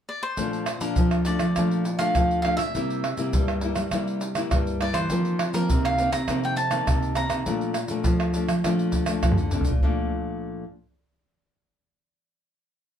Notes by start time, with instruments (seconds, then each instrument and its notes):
0.09 cavaquinho D5
0.23 cavaquinho C5
0.37 nylon-string guitar A#2 F3 A3 D4, pandeiro, shaker, surdo
0.53 pandeiro, shaker
0.66 pandeiro, tamborim, shaker
0.81 nylon-string guitar A#2 F3 D4, cavaquinho A#4, pandeiro, shaker
0.96 nylon-string guitar F2 F3, pandeiro, shaker, surdo
1.11 pandeiro, tamborim, shaker
1.25 nylon-string guitar F3 A3 D4, cavaquinho D5, pandeiro, shaker
1.39 nylon-string guitar F3, pandeiro, tamborim, shaker
1.56 nylon-string guitar A#2 F3 A3 D4, pandeiro, tamborim, shaker, surdo
1.71 pandeiro, shaker
1.85 pandeiro, shaker
1.99 nylon-string guitar F3 A3 D4, cavaquinho F5, pandeiro, tamborim, shaker
2.15 nylon-string guitar F2 F3, pandeiro, tamborim, shaker, surdo
2.31 pandeiro, shaker
2.42 nylon-string guitar F3 A3 D4, cavaquinho F5, pandeiro, tamborim
2.57 nylon-string guitar A#2, cavaquinho E5, pandeiro, tamborim, shaker
2.75 nylon-string guitar C3 G3 A#3 E4, pandeiro, shaker, surdo
2.90 pandeiro, shaker
3.04 pandeiro, tamborim
3.17 nylon-string guitar C3 G3 A#3 E4, pandeiro, shaker
3.33 nylon-string guitar G2 G3, pandeiro, shaker, surdo
3.48 pandeiro, tamborim, shaker
3.61 nylon-string guitar G3 A#3 E4, pandeiro
3.76 nylon-string guitar G3, pandeiro, tamborim, shaker
3.91 nylon-string guitar C3 G3 A#3 E4, pandeiro, tamborim, shaker, surdo
4.07 pandeiro, shaker
4.21 pandeiro, shaker
4.35 nylon-string guitar G3 A#3 E4, pandeiro, tamborim, shaker
4.51 nylon-string guitar G2 G3, pandeiro, tamborim, shaker, surdo
4.67 pandeiro, shaker
4.81 nylon-string guitar G3 A#3 E4, cavaquinho D5, pandeiro, tamborim
4.94 nylon-string guitar E3, cavaquinho C5, pandeiro, tamborim, shaker
5.10 nylon-string guitar F2 D#3 F3 A#3 C4, pandeiro, shaker, surdo
5.25 pandeiro, shaker
5.39 pandeiro, tamborim
5.54 nylon-string guitar D#3 F3 A#3 C4, cavaquinho A#4, pandeiro, shaker
5.70 nylon-string guitar C3, pandeiro, shaker, surdo
5.85 cavaquinho F5, pandeiro, tamborim, shaker
5.98 nylon-string guitar D#3 A#3 C4, pandeiro, shaker
6.13 nylon-string guitar C3, cavaquinho A#5, pandeiro, tamborim, shaker
6.28 nylon-string guitar F2 C3 D#3 A#3 C4, pandeiro, tamborim, shaker, surdo
6.43 cavaquinho G5, pandeiro, shaker
6.56 cavaquinho A5, pandeiro, shaker
6.71 nylon-string guitar D#3 A#3 C4, pandeiro, tamborim, shaker
6.87 nylon-string guitar C3, pandeiro, tamborim, shaker, surdo
7.03 pandeiro, shaker
7.15 nylon-string guitar D#3 A#3 C4, cavaquinho A#5, pandeiro, tamborim, shaker
7.30 nylon-string guitar C3, pandeiro, tamborim, shaker
7.46 nylon-string guitar A#2 F3 A3 D4, pandeiro, shaker, surdo
7.61 pandeiro, shaker
7.74 pandeiro, tamborim, shaker
7.88 nylon-string guitar A#2 F3 A3 D4, pandeiro, shaker
8.04 nylon-string guitar F2 F3, pandeiro, shaker, surdo
8.20 pandeiro, tamborim, shaker
8.34 nylon-string guitar F3 A3 D4, pandeiro, shaker
8.48 nylon-string guitar F3, pandeiro, tamborim, shaker
8.64 nylon-string guitar A#2 F3 A3 D4, pandeiro, tamborim, shaker, surdo
8.79 pandeiro, shaker
8.92 pandeiro, shaker, surdo
9.06 nylon-string guitar F3 A3 D4, pandeiro, tamborim, shaker
9.23 nylon-string guitar F2 F3, pandeiro, tamborim, shaker, surdo
9.32 surdo
9.38 nylon-string guitar D3, pandeiro, shaker
9.42 surdo
9.51 nylon-string guitar C3 F3 A3 D4, surdo, pandeiro, shaker
9.61 pandeiro, shaker, surdo
9.67 nylon-string guitar A#2, surdo
9.81 nylon-string guitar A#2 F3 A3 D4, surdo